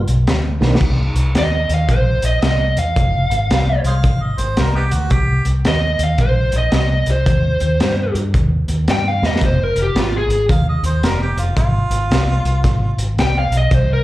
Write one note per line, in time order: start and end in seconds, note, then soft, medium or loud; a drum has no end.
0.07 0.26 B1 medium
0.07 closed hi-hat medium
0.27 0.60 D2 medium
0.27 snare loud
0.27 closed hi-hat medium
0.60 0.80 B1 medium
0.60 0.78 D#3 medium
0.60 0.78 A#3 medium
0.60 0.79 C4 medium
0.60 0.79 D4 medium
0.60 snare medium
0.75 snare medium
0.81 1.13 C2 medium
0.81 kick loud
0.81 crash medium
1.15 1.34 C2 medium
1.15 closed hi-hat medium
1.35 1.67 D#2 medium
1.35 1.71 D#5 medium
1.35 snare loud
1.35 closed hi-hat medium
1.69 1.88 D#2 medium
1.69 closed hi-hat medium
1.74 1.90 F5 medium
1.89 2.21 A#1 medium
1.89 2.25 C5 medium
1.89 kick loud
1.89 closed hi-hat medium
2.22 2.41 A#1 medium
2.22 2.42 D#5 medium
2.22 closed hi-hat medium
2.42 2.75 C2 medium
2.42 2.78 D#5 medium
2.42 snare loud
2.42 closed hi-hat medium
2.77 2.96 E2 medium
2.77 3.83 F5 medium
2.77 closed hi-hat medium
2.96 3.29 F1 medium
2.96 kick loud
2.96 closed hi-hat medium
3.30 3.49 G#1 medium
3.30 closed hi-hat medium
3.50 3.83 C2 medium
3.50 snare loud
3.50 closed hi-hat medium
3.84 4.03 C2 medium
3.84 3.94 G#4 medium
3.84 3.94 C5 medium
3.84 4.24 F5 medium
3.84 closed hi-hat medium
4.04 4.36 G#1 medium
4.04 kick loud
4.04 closed hi-hat medium
4.22 4.41 D#5 medium
4.38 4.57 G#1 medium
4.38 4.57 C5 medium
4.38 closed hi-hat medium
4.57 4.90 C2 medium
4.57 4.75 A#4 medium
4.57 snare loud
4.57 closed hi-hat medium
4.75 4.83 B3 medium
4.75 4.83 D#4 medium
4.75 4.94 G4 medium
4.91 5.10 D2 medium
4.91 5.13 F#4 medium
4.91 closed hi-hat medium
5.10 5.43 C2 medium
5.10 5.44 G4 loud
5.10 kick loud
5.10 closed hi-hat medium
5.45 5.64 C2 medium
5.45 closed hi-hat medium
5.65 5.97 D#2 medium
5.65 6.01 D#5 medium
5.65 snare loud
5.65 closed hi-hat medium
5.99 6.18 D#2 medium
5.99 closed hi-hat medium
6.03 6.20 F5 medium
6.18 6.51 A#1 medium
6.18 6.55 C5 loud
6.18 kick loud
6.18 closed hi-hat medium
6.52 6.72 A#1 medium
6.52 closed hi-hat medium
6.58 6.74 D#5 medium
6.72 7.05 C2 medium
6.72 7.09 D#5 medium
6.72 snare loud
6.72 closed hi-hat medium
7.06 7.26 C2 medium
7.06 closed hi-hat medium
7.11 8.14 C5 medium
7.26 7.59 D#2 medium
7.26 kick loud
7.26 closed hi-hat medium
7.60 7.80 D#2 medium
7.60 closed hi-hat medium
7.80 8.13 G2 medium
7.80 snare loud
7.80 closed hi-hat medium
8.15 8.33 G2 medium
8.15 closed hi-hat medium
8.34 8.67 D#2 medium
8.34 kick loud
8.34 closed hi-hat medium
8.68 8.87 D#2 medium
8.68 closed hi-hat medium
8.88 9.20 G2 medium
8.88 9.08 G5 medium
8.88 snare loud
8.88 closed hi-hat medium
9.08 9.26 F5 medium
9.22 9.41 E2 medium
9.22 9.42 D#5 medium
9.22 snare medium
9.36 snare medium
9.41 9.74 F1 medium
9.41 kick loud
9.41 closed hi-hat medium
9.45 9.63 C5 medium
9.63 9.79 A#4 medium
9.76 9.94 F1 medium
9.76 closed hi-hat medium
9.82 9.99 G4 medium
9.95 10.28 G#1 medium
9.95 snare loud
9.95 closed hi-hat medium
9.99 10.15 F4 medium
10.18 10.44 G#4 medium
10.28 10.48 G#1 medium
10.28 closed hi-hat medium
10.49 10.82 D#2 medium
10.49 10.67 F5 medium
10.49 kick loud
10.49 closed hi-hat medium
10.69 10.85 D#5 medium
10.83 11.02 D#2 medium
10.83 11.03 C5 medium
10.83 closed hi-hat medium
11.03 11.35 F1 medium
11.03 11.21 A#4 medium
11.03 snare loud
11.03 closed hi-hat medium
11.22 11.38 G4 medium
11.37 11.56 F1 medium
11.37 11.56 F4 medium
11.37 closed hi-hat medium
11.57 11.89 G#1 medium
11.57 13.04 F4 loud
11.57 kick loud
11.57 closed hi-hat medium
11.90 12.09 G#1 medium
11.90 closed hi-hat medium
12.11 12.43 C2 medium
12.11 snare loud
12.11 closed hi-hat medium
12.44 12.63 C2 medium
12.44 closed hi-hat medium
12.64 12.96 G#1 medium
12.64 kick loud
12.64 snare soft
12.64 closed hi-hat medium
12.97 13.16 G#1 medium
12.97 closed hi-hat medium
13.17 13.50 C2 medium
13.17 13.36 G5 medium
13.17 snare loud
13.17 closed hi-hat medium
13.39 13.55 F5 medium
13.50 13.70 B1 medium
13.50 closed hi-hat medium
13.57 13.74 D#5 medium
13.71 14.04 C2 medium
13.71 13.90 C5 medium
13.71 kick loud
13.71 closed hi-hat medium
13.93 14.04 A#4 medium